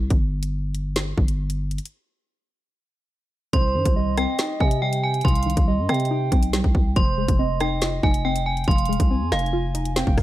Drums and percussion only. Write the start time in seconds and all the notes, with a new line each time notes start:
0.10 kick, closed hi-hat
0.43 closed hi-hat
0.75 closed hi-hat
0.96 snare, closed hi-hat
1.18 kick
1.28 closed hi-hat
1.50 closed hi-hat
1.71 closed hi-hat
1.78 closed hi-hat
1.85 closed hi-hat
3.53 kick, closed hi-hat
3.86 kick, closed hi-hat
4.17 cross-stick, closed hi-hat
4.39 snare, closed hi-hat
4.60 kick
4.71 closed hi-hat
4.93 closed hi-hat
5.14 closed hi-hat
5.21 kick, closed hi-hat
5.28 closed hi-hat
5.35 closed hi-hat
5.43 closed hi-hat
5.50 closed hi-hat
5.57 kick, closed hi-hat
5.89 cross-stick, closed hi-hat
5.94 closed hi-hat
6.00 closed hi-hat
6.05 closed hi-hat
6.32 kick, closed hi-hat
6.43 closed hi-hat
6.53 snare, closed hi-hat
6.64 kick
6.75 kick
6.96 kick, closed hi-hat
7.28 kick, closed hi-hat
7.60 cross-stick, closed hi-hat
7.82 snare, closed hi-hat
8.03 kick
8.14 closed hi-hat
8.36 closed hi-hat
8.57 closed hi-hat
8.64 kick, closed hi-hat
8.71 closed hi-hat
8.78 closed hi-hat
8.86 closed hi-hat
8.93 closed hi-hat
9.00 kick, closed hi-hat
9.32 cross-stick, snare, closed hi-hat
9.39 closed hi-hat
9.46 closed hi-hat
9.75 closed hi-hat
9.85 closed hi-hat
9.96 snare, closed hi-hat
10.07 kick
10.18 kick, cross-stick, open hi-hat